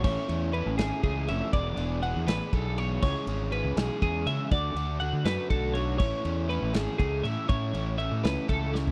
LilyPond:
<<
  \new Staff \with { instrumentName = "Clean electric guitar" } { \time 6/8 \key a \major \tempo 4. = 81 cis''4 b'8 gis'8 gis'8 e''8 | d''4 fis''8 b'8 a'8 cis''8 | cis''4 b'8 gis'8 gis'8 e''8 | d''4 fis''8 b'8 a'8 cis''8 |
cis''4 b'8 gis'8 gis'8 e''8 | cis''4 e''8 b'8 a'8 cis''8 | }
  \new Staff \with { instrumentName = "Overdriven electric guitar" } { \time 6/8 \key a \major <e a cis' e'>8 <e a cis' e'>8 <e a cis' e'>8 <e a cis' e'>8 <e a cis' e'>8 <e a cis' e'>8 | <e b d' gis'>8 <e b d' gis'>8 <e b d' gis'>8 <e b d' gis'>8 <e b d' gis'>8 <e b d' gis'>8 | <e gis cis' gis'>8 <e gis cis' gis'>8 <e gis cis' gis'>8 <e gis cis' gis'>8 <e gis cis' gis'>8 <e gis cis' gis'>8 | <d a d' fis'>8 <d a d' fis'>8 <d a d' fis'>8 <d a d' fis'>8 <d a d' fis'>8 <d a d' fis'>8 |
<e a cis' e'>8 <e a cis' e'>8 <e a cis' e'>8 <e a cis' e'>8 <e a cis' e'>8 <e a cis' e'>8 | <e a cis' e'>8 <e a cis' e'>8 <e a cis' e'>8 <e a cis' e'>8 <e a cis' e'>8 <e a cis' e'>8 | }
  \new Staff \with { instrumentName = "Fingered electric bass" } { \clef bass \time 6/8 \key a \major a,,16 r16 e,8. a,,16 gis,,16 r16 cis,8 f,,16 r16 | e,,8 e,,8. e,16 a,,16 r16 b,,4 | cis,16 r16 gis,,8. cis,16 b,,16 r16 e,8 cis16 r16 | d,8 d,8. d16 fis,16 r16 b,,4 |
a,,16 r16 e,8. a,,16 gis,,16 r16 cis,8 a,16 r16 | a,8 a,,8. a,16 cis,16 r16 cis,4 | }
  \new DrumStaff \with { instrumentName = "Drums" } \drummode { \time 6/8 <cymc bd>8 cymr8 cymr8 <cymr sn>8 <bd cymr>8 cymr8 | <bd cymr>8 cymr8 cymr8 <cymr sn>8 <bd cymr>8 cymr8 | <cymc bd>8 cymr8 cymr8 <cymr sn>8 <bd cymr>8 cymr8 | <bd cymr>8 cymr8 cymr8 <cymr sn>8 <bd cymr>8 cymr8 |
<cymc bd>8 cymr8 cymr8 <cymr sn>8 <bd cymr>8 cymr8 | <bd cymr>8 cymr8 cymr8 <cymr sn>8 <bd cymr>8 sn16 tomfh16 | }
>>